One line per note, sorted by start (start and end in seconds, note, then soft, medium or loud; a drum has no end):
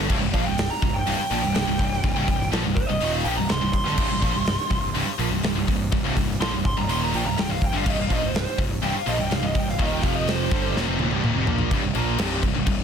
0.10 0.21 C1 medium
0.10 0.20 C2 medium
0.10 0.21 G2 loud
0.10 kick loud
0.10 crash medium
0.22 0.33 C1 medium
0.22 0.33 C2 medium
0.22 0.34 G2 medium
0.34 0.45 A#1 loud
0.34 0.45 A#2 medium
0.34 0.46 F3 medium
0.34 0.45 F5 medium
0.34 kick medium
0.34 open hi-hat medium
0.45 0.69 C1 medium
0.45 0.65 C2 medium
0.45 0.66 G2 medium
0.45 0.69 G5 medium
0.58 snare loud
0.58 open hi-hat medium
0.70 0.94 A#5 loud
0.82 1.05 C1 medium
0.82 1.02 C2 medium
0.82 1.02 G2 medium
0.82 kick loud
0.82 open hi-hat medium
0.94 1.53 G5 medium
1.06 1.18 C1 loud
1.06 1.18 C2 loud
1.06 1.19 G2 loud
1.06 open hi-hat medium
1.19 muted picked electric bass stroke soft
1.19 muted distorted electric guitar stroke medium
1.19 muted overdriven electric guitar stroke medium
1.31 1.42 A#1 loud
1.31 1.42 A#2 medium
1.31 1.43 F3 loud
1.31 open hi-hat medium
1.42 1.54 C1 medium
1.42 1.54 C2 medium
1.42 1.54 G2 medium
1.55 1.66 C1 medium
1.55 1.66 C2 medium
1.55 1.67 G2 medium
1.55 2.49 G5 medium
1.55 snare loud
1.55 open hi-hat medium
1.67 1.78 C1 medium
1.67 1.79 C2 medium
1.67 1.79 G2 medium
1.79 2.02 C1 medium
1.79 1.99 C2 medium
1.79 1.99 G2 medium
1.79 kick medium
1.79 open hi-hat medium
1.93 snare soft
2.04 2.15 C1 medium
2.04 2.15 C2 medium
2.04 2.16 G2 medium
2.04 kick loud
2.04 open hi-hat medium
2.16 2.27 C1 medium
2.16 2.27 C2 loud
2.16 2.28 G2 loud
2.28 2.50 C1 medium
2.28 2.48 C2 medium
2.28 2.48 G2 medium
2.28 kick medium
2.28 open hi-hat medium
2.41 snare soft
2.52 2.64 A#1 medium
2.52 2.63 A#2 loud
2.52 2.64 F3 loud
2.52 snare loud
2.52 open hi-hat medium
2.64 2.87 C1 medium
2.64 2.84 C2 medium
2.64 2.84 G2 medium
2.76 2.86 C5 medium
2.76 kick medium
2.76 open hi-hat medium
2.86 3.00 C1 medium
2.86 3.00 C2 medium
2.86 3.01 G2 medium
2.86 3.11 D#5 medium
3.01 3.23 D#1 loud
3.01 3.24 D#2 loud
3.01 3.24 A#2 loud
3.01 3.25 D#3 loud
3.01 open hi-hat medium
3.12 3.24 F5 medium
3.24 3.36 A#1 loud
3.24 3.36 A#2 medium
3.24 3.37 F3 loud
3.24 3.36 G5 medium
3.24 open hi-hat medium
3.36 3.48 C1 medium
3.36 3.48 C2 medium
3.36 3.49 G2 medium
3.36 3.49 A#5 medium
3.49 3.61 C1 medium
3.49 3.60 C2 medium
3.49 3.61 G2 medium
3.49 3.73 C6 loud
3.49 snare loud
3.49 open hi-hat medium
3.61 3.84 C1 medium
3.61 3.81 C2 medium
3.61 3.81 G2 medium
3.73 5.15 C6 loud
3.73 kick medium
3.73 open hi-hat medium
3.85 3.97 G1 loud
3.85 3.97 G2 loud
3.85 3.97 D3 loud
3.85 snare soft
3.97 4.09 C1 medium
3.97 4.08 C2 medium
3.97 4.09 G2 loud
3.97 kick loud
3.97 crash loud
4.09 4.21 C1 medium
4.09 4.21 C2 medium
4.09 4.22 G2 medium
4.22 4.33 A#1 medium
4.22 4.33 A#2 medium
4.22 4.34 F3 loud
4.22 kick medium
4.22 open hi-hat medium
4.34 4.57 C1 medium
4.34 4.53 C2 medium
4.34 4.54 G2 medium
4.46 snare loud
4.46 open hi-hat medium
4.71 4.93 C1 medium
4.71 4.90 C2 medium
4.71 4.90 G2 medium
4.71 kick medium
4.71 open hi-hat medium
4.94 5.06 C1 loud
4.94 5.06 C2 loud
4.94 5.07 G2 loud
4.94 open hi-hat medium
5.06 muted picked electric bass stroke soft
5.06 muted overdriven electric guitar stroke medium
5.06 muted distorted electric guitar stroke medium
5.18 5.30 A#1 medium
5.18 5.30 A#2 loud
5.18 5.31 F3 medium
5.18 open hi-hat medium
5.31 5.42 C1 medium
5.31 5.43 C2 medium
5.31 5.43 G2 medium
5.43 5.54 C1 medium
5.43 5.54 C2 medium
5.43 5.54 G2 medium
5.43 snare loud
5.43 open hi-hat medium
5.55 5.66 C1 medium
5.55 5.66 C2 medium
5.55 5.67 G2 medium
5.67 5.91 C1 medium
5.67 5.87 C2 medium
5.67 5.87 G2 medium
5.67 kick medium
5.67 open hi-hat medium
5.92 6.04 C1 medium
5.92 6.03 C2 medium
5.92 6.04 G2 medium
5.92 kick loud
5.92 open hi-hat medium
6.04 6.16 C1 loud
6.04 6.15 C2 loud
6.04 6.16 G2 loud
6.17 6.39 C1 medium
6.17 6.36 C2 medium
6.17 6.36 G2 medium
6.17 kick medium
6.17 open hi-hat medium
6.30 snare soft
6.40 6.52 A#1 loud
6.40 6.52 A#2 loud
6.40 6.53 F3 loud
6.40 6.53 C6 medium
6.40 snare loud
6.40 open hi-hat medium
6.53 6.75 C1 medium
6.53 6.73 C2 medium
6.53 6.73 G2 medium
6.65 6.77 C6 medium
6.65 kick medium
6.65 open hi-hat medium
6.77 6.88 C1 medium
6.77 6.89 C2 medium
6.77 6.89 G2 medium
6.77 6.89 A#5 loud
6.89 7.12 D#1 loud
6.89 7.13 D#2 loud
6.89 7.12 A#2 loud
6.89 7.13 D#3 loud
6.89 7.01 C6 loud
6.89 open hi-hat medium
7.03 7.15 A#5 loud
7.13 7.25 A#1 loud
7.13 7.25 A#2 loud
7.13 7.25 F3 loud
7.13 7.26 G5 medium
7.13 open hi-hat medium
7.26 7.37 C1 medium
7.26 7.36 C2 medium
7.26 7.37 G2 medium
7.26 7.38 A#5 loud
7.37 7.49 C1 medium
7.37 7.48 C2 medium
7.37 7.49 G2 medium
7.37 7.51 G5 loud
7.37 snare loud
7.37 open hi-hat medium
7.49 7.72 C1 medium
7.49 7.69 C2 medium
7.49 7.69 G2 medium
7.49 7.62 F5 medium
7.62 7.75 G5 medium
7.62 kick medium
7.62 open hi-hat medium
7.73 7.85 G1 loud
7.73 7.85 G2 loud
7.73 7.85 D3 loud
7.73 7.90 F5 loud
7.85 7.97 C1 loud
7.85 7.97 C2 medium
7.85 7.97 G2 loud
7.85 kick loud
7.85 crash loud
7.90 8.00 D#5 loud
7.98 8.09 C1 medium
7.98 8.10 C2 medium
7.98 8.10 G2 medium
7.98 8.12 F5 medium
8.10 8.21 A#1 loud
8.10 8.21 A#2 medium
8.10 8.22 F3 loud
8.10 8.26 D#5 loud
8.10 kick medium
8.10 open hi-hat medium
8.22 8.45 C1 medium
8.22 8.42 C2 medium
8.22 8.42 G2 medium
8.22 8.36 C5 medium
8.35 8.59 C5 loud
8.35 snare loud
8.35 open hi-hat medium
8.58 8.81 C1 medium
8.58 8.78 C2 medium
8.58 8.78 G2 medium
8.58 kick medium
8.58 open hi-hat medium
8.82 8.94 C1 loud
8.82 8.94 C2 loud
8.82 8.94 G2 loud
8.82 8.95 G5 loud
8.82 open hi-hat medium
8.95 9.08 F5 loud
8.95 muted overdriven electric guitar stroke medium
8.95 muted picked electric bass stroke soft
8.95 muted distorted electric guitar stroke medium
9.07 9.18 A#1 loud
9.07 9.18 A#2 loud
9.07 9.18 F3 loud
9.07 9.19 D#5 medium
9.07 open hi-hat medium
9.18 9.30 C1 medium
9.18 9.30 C2 medium
9.18 9.30 G2 medium
9.18 9.33 G5 loud
9.31 9.43 C1 medium
9.31 9.41 C2 medium
9.31 9.42 G2 medium
9.31 9.44 F5 loud
9.31 snare loud
9.31 open hi-hat medium
9.43 9.54 C1 medium
9.43 9.54 C2 medium
9.43 9.54 G2 medium
9.43 9.55 D#5 medium
9.55 9.77 C1 medium
9.55 9.74 C2 medium
9.55 9.74 G2 medium
9.55 9.68 G5 loud
9.55 kick medium
9.55 open hi-hat medium
9.69 9.80 F5 medium
9.69 snare soft
9.79 10.01 D#1 medium
9.79 10.02 D#2 loud
9.79 10.03 A#2 loud
9.79 10.03 D#3 medium
9.79 9.92 D#5 loud
9.79 kick loud
9.79 open hi-hat medium
9.92 10.02 G5 medium
10.02 10.48 F1 medium
10.02 10.50 F2 medium
10.02 10.51 C3 medium
10.02 10.51 F3 loud
10.02 10.15 F5 medium
10.02 kick medium
10.02 open hi-hat medium
10.15 10.27 D#5 medium
10.28 10.74 C5 medium
10.28 snare loud
10.28 open hi-hat medium
10.51 10.74 G1 medium
10.51 10.75 G2 medium
10.51 10.75 D3 loud
10.51 10.75 G3 loud
10.51 kick loud
10.51 open hi-hat medium
10.76 10.87 D#1 medium
10.76 10.87 D#2 loud
10.76 10.87 A#2 loud
10.76 snare medium
10.88 10.99 F1 loud
10.88 10.99 F2 medium
10.88 10.99 C3 loud
10.99 11.11 D#1 loud
10.99 11.11 D#2 medium
10.99 11.11 A#2 loud
10.99 high tom medium
11.11 11.22 C1 loud
11.11 11.22 C2 medium
11.11 11.23 G2 medium
11.11 high tom medium
11.23 11.35 D#1 medium
11.23 11.34 D#2 medium
11.23 11.35 A#2 medium
11.23 mid tom medium
11.36 11.47 F1 loud
11.36 11.47 F2 medium
11.36 11.47 C3 loud
11.47 11.70 A#1 medium
11.47 11.70 A#2 medium
11.47 11.71 F3 loud
11.47 11.71 A#3 loud
11.47 floor tom loud
11.59 floor tom medium
11.70 11.82 C1 medium
11.70 11.82 C2 medium
11.70 11.83 G2 loud
11.70 kick loud
11.70 crash medium
11.83 11.94 C1 medium
11.83 11.94 C2 medium
11.83 11.95 G2 medium
11.95 12.18 A#1 medium
11.95 12.18 A#2 medium
11.95 12.19 F3 medium
11.95 12.19 A#3 medium
11.95 crash medium
12.18 12.41 C1 loud
12.18 12.42 C2 loud
12.18 12.42 G2 medium
12.18 12.43 C3 loud
12.18 snare loud
12.18 crash medium
12.43 12.54 C1 medium
12.43 12.53 C2 medium
12.43 12.54 G2 medium
12.43 kick medium
12.43 crash medium
12.55 12.66 C1 medium
12.55 12.65 C2 medium
12.55 12.66 G2 medium
12.66 12.84 C1 medium
12.66 12.84 C2 medium
12.66 12.84 G2 medium
12.66 kick loud
12.66 crash medium